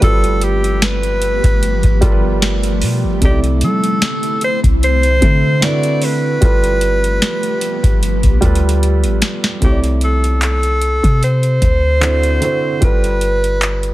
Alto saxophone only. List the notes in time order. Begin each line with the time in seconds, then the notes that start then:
0.03 A4
0.44 G4
0.83 B4
3.25 G4
3.65 A4
4.44 C5
4.84 C5
5.64 D5
6.04 B4
9.64 G4
10.04 A4
10.44 A4
11.24 C5
12.84 B4